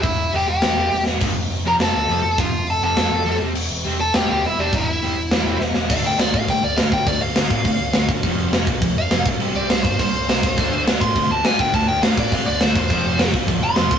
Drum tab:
CC |--------|x-------|--------|x-------|
HH |o-o-o-o-|--o-o-o-|o-o-o-o-|--o-o-o-|
SD |----o--o|----o---|----o---|----o---|
BD |o-------|o-------|o-------|--------|

CC |--------|xxxxxxxx|xxxxxxxx|xxxxxxxx|
HH |o-o-o---|--------|--------|--------|
SD |----o-oo|--o---o-|--o---o-|--o---o-|
BD |o-------|o--oo--o|o--oo--o|o--oo--o|

CC |xxxxxxxx|xxxxxxxx|xxxxxxxx|xxxxxxxx|
HH |--------|--------|--------|--------|
SD |--o---o-|--o---o-|--o---o-|--o---o-|
BD |---oo--o|o--oo--o|o--oo--o|o--oo--o|